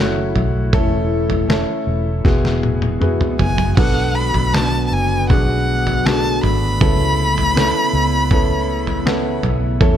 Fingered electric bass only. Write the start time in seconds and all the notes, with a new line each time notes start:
Already playing: F#1
0.36 B1
0.73 E1
1.87 E1
2.25 E1
3.39 F#1
3.77 B1
4.35 B1
4.92 F#1
5.30 B1
6.44 G#1
6.81 C#2
7.93 C#2
9.43 B1
9.81 E2